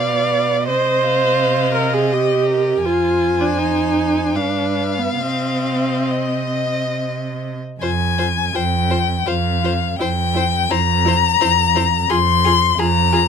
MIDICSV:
0, 0, Header, 1, 5, 480
1, 0, Start_track
1, 0, Key_signature, -3, "minor"
1, 0, Tempo, 724638
1, 446, Time_signature, 3, 2, 24, 8
1, 2372, Tempo, 775194
1, 2852, Tempo, 863309
1, 4772, Tempo, 724638
1, 4773, Key_signature, -4, "minor"
1, 6692, Tempo, 687285
1, 8488, End_track
2, 0, Start_track
2, 0, Title_t, "Violin"
2, 0, Program_c, 0, 40
2, 0, Note_on_c, 0, 71, 61
2, 442, Note_off_c, 0, 71, 0
2, 446, Note_on_c, 0, 75, 56
2, 683, Note_on_c, 0, 77, 64
2, 693, Note_off_c, 0, 75, 0
2, 1411, Note_on_c, 0, 75, 57
2, 1421, Note_off_c, 0, 77, 0
2, 1649, Note_off_c, 0, 75, 0
2, 1653, Note_on_c, 0, 70, 55
2, 1893, Note_on_c, 0, 72, 57
2, 1902, Note_off_c, 0, 70, 0
2, 2857, Note_on_c, 0, 71, 57
2, 2865, Note_off_c, 0, 72, 0
2, 3322, Note_on_c, 0, 75, 54
2, 3330, Note_off_c, 0, 71, 0
2, 4547, Note_off_c, 0, 75, 0
2, 4777, Note_on_c, 0, 80, 79
2, 5265, Note_on_c, 0, 79, 79
2, 5275, Note_off_c, 0, 80, 0
2, 5743, Note_on_c, 0, 77, 80
2, 5753, Note_off_c, 0, 79, 0
2, 6212, Note_off_c, 0, 77, 0
2, 6216, Note_on_c, 0, 79, 92
2, 6693, Note_on_c, 0, 82, 103
2, 6703, Note_off_c, 0, 79, 0
2, 7665, Note_on_c, 0, 84, 101
2, 7676, Note_off_c, 0, 82, 0
2, 8144, Note_on_c, 0, 82, 100
2, 8154, Note_off_c, 0, 84, 0
2, 8488, Note_off_c, 0, 82, 0
2, 8488, End_track
3, 0, Start_track
3, 0, Title_t, "Violin"
3, 0, Program_c, 1, 40
3, 0, Note_on_c, 1, 77, 53
3, 417, Note_off_c, 1, 77, 0
3, 447, Note_on_c, 1, 75, 56
3, 1861, Note_off_c, 1, 75, 0
3, 1885, Note_on_c, 1, 80, 56
3, 2851, Note_on_c, 1, 77, 53
3, 2860, Note_off_c, 1, 80, 0
3, 3828, Note_on_c, 1, 75, 49
3, 3836, Note_off_c, 1, 77, 0
3, 4661, Note_off_c, 1, 75, 0
3, 4776, Note_on_c, 1, 72, 59
3, 4829, Note_off_c, 1, 72, 0
3, 5019, Note_on_c, 1, 72, 53
3, 5072, Note_off_c, 1, 72, 0
3, 5264, Note_on_c, 1, 72, 52
3, 5317, Note_off_c, 1, 72, 0
3, 5496, Note_on_c, 1, 72, 54
3, 5549, Note_off_c, 1, 72, 0
3, 5735, Note_on_c, 1, 72, 56
3, 5788, Note_off_c, 1, 72, 0
3, 5988, Note_on_c, 1, 72, 55
3, 6041, Note_off_c, 1, 72, 0
3, 6229, Note_on_c, 1, 72, 61
3, 6282, Note_off_c, 1, 72, 0
3, 6462, Note_on_c, 1, 72, 57
3, 6515, Note_off_c, 1, 72, 0
3, 6692, Note_on_c, 1, 72, 60
3, 6748, Note_off_c, 1, 72, 0
3, 6945, Note_on_c, 1, 72, 57
3, 7001, Note_off_c, 1, 72, 0
3, 7178, Note_on_c, 1, 72, 61
3, 7234, Note_off_c, 1, 72, 0
3, 7421, Note_on_c, 1, 72, 60
3, 7477, Note_off_c, 1, 72, 0
3, 7660, Note_on_c, 1, 68, 70
3, 7715, Note_off_c, 1, 68, 0
3, 7906, Note_on_c, 1, 68, 64
3, 7962, Note_off_c, 1, 68, 0
3, 8143, Note_on_c, 1, 68, 67
3, 8199, Note_off_c, 1, 68, 0
3, 8380, Note_on_c, 1, 68, 65
3, 8436, Note_off_c, 1, 68, 0
3, 8488, End_track
4, 0, Start_track
4, 0, Title_t, "Viola"
4, 0, Program_c, 2, 41
4, 0, Note_on_c, 2, 74, 79
4, 449, Note_off_c, 2, 74, 0
4, 452, Note_on_c, 2, 72, 88
4, 1149, Note_off_c, 2, 72, 0
4, 1156, Note_on_c, 2, 70, 71
4, 1281, Note_on_c, 2, 68, 66
4, 1291, Note_off_c, 2, 70, 0
4, 1405, Note_on_c, 2, 67, 79
4, 1415, Note_off_c, 2, 68, 0
4, 1890, Note_on_c, 2, 65, 75
4, 1900, Note_off_c, 2, 67, 0
4, 2254, Note_on_c, 2, 62, 64
4, 2264, Note_off_c, 2, 65, 0
4, 2374, Note_on_c, 2, 63, 72
4, 2383, Note_off_c, 2, 62, 0
4, 2849, Note_on_c, 2, 62, 67
4, 2858, Note_off_c, 2, 63, 0
4, 3200, Note_on_c, 2, 59, 58
4, 3209, Note_off_c, 2, 62, 0
4, 3320, Note_on_c, 2, 60, 69
4, 3329, Note_off_c, 2, 59, 0
4, 4305, Note_off_c, 2, 60, 0
4, 4778, Note_on_c, 2, 65, 57
4, 4831, Note_off_c, 2, 65, 0
4, 5020, Note_on_c, 2, 65, 50
4, 5073, Note_off_c, 2, 65, 0
4, 5250, Note_on_c, 2, 65, 55
4, 5303, Note_off_c, 2, 65, 0
4, 5492, Note_on_c, 2, 65, 52
4, 5545, Note_off_c, 2, 65, 0
4, 5731, Note_on_c, 2, 65, 57
4, 5784, Note_off_c, 2, 65, 0
4, 5976, Note_on_c, 2, 65, 55
4, 6029, Note_off_c, 2, 65, 0
4, 6217, Note_on_c, 2, 64, 64
4, 6270, Note_off_c, 2, 64, 0
4, 6450, Note_on_c, 2, 64, 54
4, 6503, Note_off_c, 2, 64, 0
4, 6688, Note_on_c, 2, 64, 56
4, 6743, Note_off_c, 2, 64, 0
4, 6930, Note_on_c, 2, 64, 59
4, 6986, Note_off_c, 2, 64, 0
4, 7181, Note_on_c, 2, 64, 62
4, 7237, Note_off_c, 2, 64, 0
4, 7422, Note_on_c, 2, 64, 60
4, 7478, Note_off_c, 2, 64, 0
4, 7667, Note_on_c, 2, 65, 68
4, 7723, Note_off_c, 2, 65, 0
4, 7915, Note_on_c, 2, 65, 63
4, 7971, Note_off_c, 2, 65, 0
4, 8148, Note_on_c, 2, 65, 63
4, 8204, Note_off_c, 2, 65, 0
4, 8376, Note_on_c, 2, 65, 65
4, 8432, Note_off_c, 2, 65, 0
4, 8488, End_track
5, 0, Start_track
5, 0, Title_t, "Cello"
5, 0, Program_c, 3, 42
5, 0, Note_on_c, 3, 47, 57
5, 444, Note_on_c, 3, 48, 58
5, 454, Note_off_c, 3, 47, 0
5, 1875, Note_off_c, 3, 48, 0
5, 1879, Note_on_c, 3, 41, 58
5, 2848, Note_on_c, 3, 43, 50
5, 2857, Note_off_c, 3, 41, 0
5, 3318, Note_off_c, 3, 43, 0
5, 3321, Note_on_c, 3, 48, 51
5, 4634, Note_off_c, 3, 48, 0
5, 4767, Note_on_c, 3, 41, 68
5, 5200, Note_off_c, 3, 41, 0
5, 5258, Note_on_c, 3, 41, 73
5, 5683, Note_off_c, 3, 41, 0
5, 5741, Note_on_c, 3, 41, 69
5, 6167, Note_off_c, 3, 41, 0
5, 6217, Note_on_c, 3, 41, 70
5, 6636, Note_off_c, 3, 41, 0
5, 6689, Note_on_c, 3, 41, 74
5, 7118, Note_off_c, 3, 41, 0
5, 7176, Note_on_c, 3, 41, 69
5, 7605, Note_off_c, 3, 41, 0
5, 7660, Note_on_c, 3, 41, 83
5, 8081, Note_off_c, 3, 41, 0
5, 8137, Note_on_c, 3, 41, 86
5, 8488, Note_off_c, 3, 41, 0
5, 8488, End_track
0, 0, End_of_file